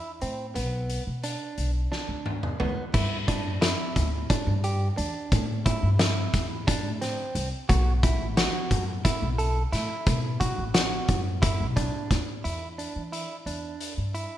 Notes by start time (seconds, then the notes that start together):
Already playing: E4
0.21 A2 C4, closed hi-hat
0.55 B1 B3, closed hi-hat
0.90 closed hi-hat
1.07 B2
1.24 D4, closed hi-hat
1.58 B1, closed hi-hat
1.92 D4, snare
2.08 D2
2.26 high tom
2.43 mid tom
2.60 A2 B3, mid tom
2.94 G2 E4, kick, crash
3.28 D4, kick, closed hi-hat
3.45 F#2
3.61 E4, snare, closed hi-hat
3.96 D2, kick, closed hi-hat
4.30 D4, kick, closed hi-hat
4.47 G2
4.64 G4, closed hi-hat
4.97 E2 D4, closed hi-hat
5.32 A2, kick, closed hi-hat
5.66 E4, kick, closed hi-hat
5.83 G2
5.99 E4, snare, closed hi-hat
6.34 E2, kick, snare, closed hi-hat
6.67 D4, kick, closed hi-hat
6.85 A2
7.01 C4, snare, closed hi-hat
7.35 C2, closed hi-hat
7.69 B1 F#4, kick, closed hi-hat
8.03 E4, kick, closed hi-hat
8.20 A1
8.37 F#4, snare, closed hi-hat
8.71 F#2, kick, closed hi-hat
9.05 E4, kick, closed hi-hat
9.22 B1
9.38 A4, closed hi-hat
9.73 A2 E4, snare, closed hi-hat
10.07 B2, kick, closed hi-hat
10.40 F#4, kick, closed hi-hat
10.58 A1
10.74 F#4, snare, closed hi-hat
11.08 F#2, kick, closed hi-hat
11.42 E4, kick, closed hi-hat
11.60 B1
11.76 D4, kick, closed hi-hat
12.11 D#2, kick, snare, closed hi-hat
12.44 E2 E4, closed hi-hat
12.78 D4, closed hi-hat
12.96 E3
13.12 E4, closed hi-hat
13.46 E2 D4, closed hi-hat
13.81 closed hi-hat
13.98 G2
14.15 E4, closed hi-hat